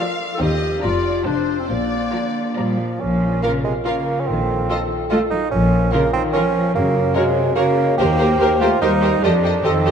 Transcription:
Already playing: violin section F5
0.00 viola section F3 F4, violin section D5 F5
0.34 clarinet A4
0.40 cello section D#2, double bass section D#2, viola section C4 D#4, clarinet G4, violin section C5 D#5 G5
0.83 double bass section F1, cello section F2, viola section F3 D4, clarinet F4, violin section D5 A#5
1.25 double bass section F1, cello section F2, viola section F3 F4, clarinet D4, violin section C5 A5
1.59 clarinet C4
1.69 double bass section A#1, cello section A#2, clarinet A#3, violin section D5
2.13 cello section D3, viola section F3 F4, violin section D5 A#5
2.57 cello section A#2 G3, bassoon F3, viola section F3 F4, violin section D5 A#5
2.79 cello section F3
3.00 double bass section A#1, cello section F3, bassoon C#4, french horn section F4 A#4
3.43 cello section C#3, bassoon A#3, viola section F4, clarinet A#4, violin section A#4 F5, flute section F5
3.64 cello section C3, bassoon G#3
3.85 cello section C#3, bassoon A#3, viola section F4, clarinet A#4, violin section A#4 F5, flute section F5
4.20 bassoon C#4
4.27 double bass section A#1, cello section D#3, bassoon C4, french horn section A4
4.68 viola section F4, clarinet A4, violin section A4 D#5, flute section F5
5.09 cello section A3, bassoon F4, viola section F4, violin section A4 D#5, clarinet A4, flute section F5
5.30 cello section F#3, bassoon D#4
5.51 double bass section A#1, cello section F3, bassoon C#4, french horn section F4 A#4
5.91 cello section C#3, bassoon A#3, viola section F4, violin section A#4 C#5, clarinet A#4, flute section F5
6.13 cello section D#3, bassoon C4
6.33 cello section F3, bassoon C#4, viola section F4, violin section A#4 C#5, clarinet A#4, flute section F5
6.75 double bass section F#2, cello section C#3, bassoon A#3, french horn section F#4 C#5
7.14 cello section C3, bassoon G#3, viola section F#4, violin section A#4 C#5, clarinet A#4, flute section C#5
7.56 cello section C#3, bassoon A#3, viola section F#4, violin section A#4 C#5, clarinet A#4, flute section C#5
7.98 double bass section D#2, cello section A#3, bassoon G4, viola section G4, french horn section A#4 C5, violin section A#4 C5
8.19 viola section G4, violin section A#4 C5
8.40 double bass section D#2, viola section G4, clarinet A#4, violin section A#4 C5, flute section C5
8.61 cello section A3, bassoon F4, viola section G4, violin section A#4 C5
8.81 double bass section D#2, cello section G3, bassoon D#4, viola section G4, clarinet A#4, violin section A#4 C5, flute section C5
9.02 viola section G4, violin section A#4 C5
9.23 double bass section F2, cello section F3, bassoon D4, viola section G4, violin section A4 D#5, french horn section A4 D#5
9.43 viola section G4, violin section A4 D#5
9.64 double bass section F2, cello section D#3, bassoon C4, viola section G4, clarinet A4, violin section A4 D#5, flute section D#5
9.85 viola section G4, violin section A4 D#5

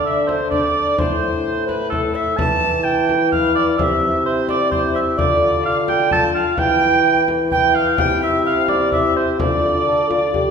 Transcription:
Already playing: bassoon D3, trombone D4
0.05 cor anglais E5, recorder E5
0.27 cor anglais C5, recorder C5, frame drum
0.51 trombone D4, cor anglais D5, recorder D5, frame drum
0.98 bassoon A2, trombone E4, cor anglais C5, recorder C5, frame drum
1.67 recorder B4, cor anglais B4, frame drum
1.90 trombone E4, cor anglais A4, recorder B4, frame drum
1.96 recorder A4
2.14 cor anglais E5, recorder E5
2.37 bassoon E3, trombone E4, cor anglais A5, recorder A5, frame drum
2.84 trombone E4, cor anglais G5, recorder G5
3.09 frame drum
3.31 recorder F5, cor anglais F5, frame drum
3.55 recorder D5, cor anglais D5
3.78 bassoon C3, trombone E4, cor anglais E5, recorder F5, frame drum
3.83 recorder E5
4.25 recorder C5, cor anglais C5
4.48 recorder D5, cor anglais D5, frame drum
4.71 trombone E4, recorder C5, cor anglais C5, frame drum
4.94 recorder E5, cor anglais E5
5.17 bassoon D3, trombone F4, recorder D5, cor anglais D5, frame drum
5.63 trombone F4, recorder F5, cor anglais F5
5.87 recorder G5, cor anglais G5, frame drum
6.11 trombone F4, recorder A5, cor anglais A5, frame drum
6.34 cor anglais F5, recorder F5 G5
6.57 bassoon E3, trombone E4, recorder G5, cor anglais G5, frame drum
7.28 frame drum
7.52 trombone E4, cor anglais G5, recorder G5, frame drum
7.74 recorder F5, cor anglais F5
7.97 bassoon C3, trombone E4, recorder G5, cor anglais G5, frame drum
8.22 recorder E5, cor anglais E5
8.45 recorder F5, cor anglais F5
8.68 recorder D5, cor anglais D5, frame drum
8.92 trombone E4, recorder E5, cor anglais E5, frame drum
9.16 recorder C5, cor anglais C5
9.39 bassoon D3, trombone F4, recorder D5, cor anglais D5, frame drum
9.86 trombone A4
10.09 trombone F4, frame drum
10.33 trombone G4, frame drum

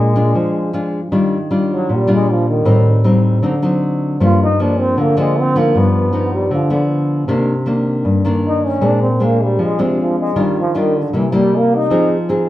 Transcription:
Already playing: nylon-string guitar A#2 G#3 D4 F4, trombone G#3
0.16 nylon-string guitar G#3 D4 F4
0.35 nylon-string guitar F3
0.73 nylon-string guitar G#3 D4 F4
1.12 nylon-string guitar D#3 G3 D4 F4
1.51 nylon-string guitar G3 D4 F4
1.73 trombone F#3
1.89 nylon-string guitar A#2
1.94 trombone G3
2.07 nylon-string guitar G3 D4 F4
2.13 trombone G#3
2.32 trombone F3
2.49 trombone D#3
2.65 nylon-string guitar A2 G3 C4 D#4
3.04 nylon-string guitar G3 C4 D#4
3.42 nylon-string guitar D3 F#3 C4 D#4
3.62 nylon-string guitar F#3 C4 D#4
4.20 nylon-string guitar G2 F3 A#3 D4
4.24 trombone F4
4.43 trombone D#4
4.59 nylon-string guitar F3 A#3 D4, trombone D4
4.80 trombone C4
4.98 nylon-string guitar D3, trombone A#3
5.17 nylon-string guitar F3 A#3 D4, trombone G#3
5.40 trombone C4
5.56 nylon-string guitar F3 B3 D#4, trombone A#3
5.75 nylon-string guitar G2, trombone B3
6.13 nylon-string guitar F3 B3 D#4
6.33 trombone G3
6.51 nylon-string guitar D3, trombone F3
6.70 trombone D3, nylon-string guitar F3 B3
7.28 nylon-string guitar C3 D#3 A#3 D4
7.66 nylon-string guitar D#3 A#3 D4
8.05 nylon-string guitar G2
8.25 nylon-string guitar D#3 A#3 D4
8.47 trombone D#4
8.66 trombone C#4
8.81 nylon-string guitar A#2 G#3 C4 D4
8.86 trombone D4
9.02 trombone C4
9.20 nylon-string guitar G#3 C4 D4, trombone A#3
9.43 trombone G3
9.59 nylon-string guitar F3
9.65 trombone G#3
9.79 trombone C3, nylon-string guitar G#3 C4 D4
10.01 trombone F3
10.19 trombone G#3
10.36 nylon-string guitar D#3 G3 D4 F4
10.41 trombone G3
10.60 trombone F3
10.75 trombone D#3, nylon-string guitar G3 D4 F4
10.98 trombone D3
11.13 nylon-string guitar C3 G3 A#3 E4
11.17 trombone E3
11.32 nylon-string guitar G3 A#3 E4, trombone G3
11.58 trombone A#3
11.75 trombone D#4
11.90 nylon-string guitar F3 C4 D#4 G#4
12.29 nylon-string guitar C4 D#4 G#4

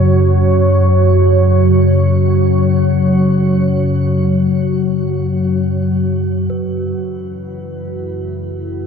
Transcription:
Already playing: synth drone F#2 C#3, ambient pad F#3 F#4 C#5
6.50 synth drone F#2 C#3, ambient pad E4, singing bowl B4
6.94 ambient pad A4

